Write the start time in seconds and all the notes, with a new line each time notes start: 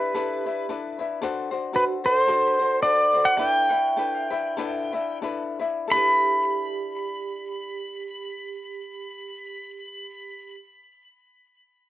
Already playing: D4 E4 G4 B4
0.14 D4 E4 A4 B4
0.46 D4 E4 B4
0.69 D4 E4 A4 B4
0.99 D4 E4 B4
1.22 D4 F#4 A4 C5
1.51 D4 F#4 C5
1.73 D4 F#4 A4 B4 C5
2.04 D4 F#4 A4 B4 C5
2.17 C5
2.27 D4 F#4 A4 C5
2.59 D4 F#4 C5
2.81 D4 F#4 A4 C5 D5
3.14 D4 F#4 C5
3.24 D5 F#5
3.36 D4 E4 A4 B4 E5 G5
3.71 D4 E4 B4
3.97 D4 E4 A4 B4
4.30 D4 E4 B4
4.57 D4 E4 A4 B4
4.93 D4 E4 B4
5.22 D4 E4 A4 B4
5.59 D4 E4 B4
5.87 D4 G4 A4 B5
5.93 E4 B4